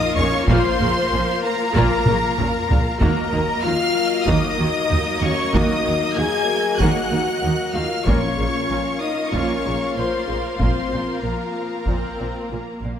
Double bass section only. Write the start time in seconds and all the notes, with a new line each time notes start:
0.16 A#1
0.47 A#1
0.80 A#1
1.12 A#1
1.75 A#1
2.07 A#1
2.38 A#1
2.70 A#1
3.00 D#2
3.33 D#2
3.65 D#2
4.27 D#2
4.59 D#2
4.91 D#2
5.21 D#2
5.54 D#2
5.85 D#2
6.16 D#2
6.80 D#2
7.12 D#2
7.42 D#2
7.74 D#2
8.06 A#1
8.38 A#1
8.70 A#1
9.33 A#1
9.65 A#1
9.97 A#1
10.28 A#1
10.59 A#1
10.92 A#1
11.24 A#1
11.86 A#1
12.19 A#1
12.50 A#1
12.82 A#1